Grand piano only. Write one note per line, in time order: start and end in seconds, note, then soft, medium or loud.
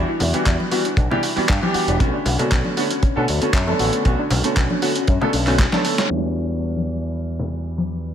0.34 0.69 E3 medium
0.34 0.69 G3 medium
0.34 0.69 B3 medium
0.34 0.69 D4 medium
0.34 0.69 F#4 medium
0.71 0.79 E3 medium
0.71 0.79 G3 medium
0.71 0.80 B3 medium
0.71 0.80 D4 medium
0.71 0.80 F#4 medium
1.10 1.18 E3 medium
1.10 1.18 G3 medium
1.10 1.18 B3 medium
1.10 1.18 D4 medium
1.10 1.18 G4 loud
1.36 1.44 E3 medium
1.36 1.44 G3 medium
1.36 1.44 B3 medium
1.36 1.44 D4 medium
1.36 1.44 F#4 medium
1.62 1.97 E3 medium
1.62 1.97 G3 medium
1.62 1.97 B3 medium
1.62 1.97 D4 medium
1.62 1.98 G4 medium
1.99 2.12 D3 medium
1.99 2.12 A3 medium
1.99 2.13 B3 medium
1.99 2.13 C#4 medium
1.99 2.13 F#4 loud
2.38 2.74 D3 medium
2.38 2.74 A3 medium
2.38 2.74 B3 medium
2.38 2.74 C#4 medium
2.38 2.74 F#4 medium
2.77 2.85 D3 medium
2.77 2.85 A3 medium
2.77 2.85 B3 medium
2.77 2.85 C#4 medium
2.77 2.85 F#4 medium
3.16 3.23 D3 medium
3.16 3.23 A3 medium
3.16 3.23 B3 medium
3.16 3.24 C#4 medium
3.16 3.24 A4 loud
3.41 3.49 D3 medium
3.41 3.49 A3 medium
3.41 3.49 B3 medium
3.41 3.49 C#4 medium
3.41 3.49 F#4 medium
3.67 4.02 D3 medium
3.67 4.02 A3 medium
3.67 4.02 B3 medium
3.67 4.03 C#4 medium
3.67 4.03 A4 medium
4.05 4.18 D3 medium
4.05 4.18 A3 medium
4.05 4.18 B3 medium
4.05 4.18 C#4 medium
4.05 4.18 F#4 loud
4.43 4.79 D3 medium
4.43 4.79 A3 medium
4.43 4.79 B3 medium
4.43 4.79 C#4 medium
4.43 4.79 F#4 medium
4.82 4.90 D3 medium
4.82 4.90 A3 medium
4.82 4.90 B3 medium
4.82 4.90 C#4 medium
4.82 4.90 F#4 medium
5.21 5.28 D3 medium
5.21 5.28 A3 medium
5.21 5.28 B3 medium
5.21 5.29 C#4 medium
5.21 5.29 A4 loud
5.47 5.54 D3 medium
5.47 5.54 A3 medium
5.47 5.54 B3 medium
5.47 5.54 C#4 medium
5.47 5.54 F#4 medium
5.72 6.07 D3 medium
5.72 6.07 A3 medium
5.72 6.08 B3 medium
5.72 6.08 C#4 medium
5.72 6.08 A4 medium
6.10 8.14 E3 medium
6.10 8.14 G3 medium
6.10 8.14 B3 medium
6.10 8.14 D4 medium
6.10 8.14 F#4 medium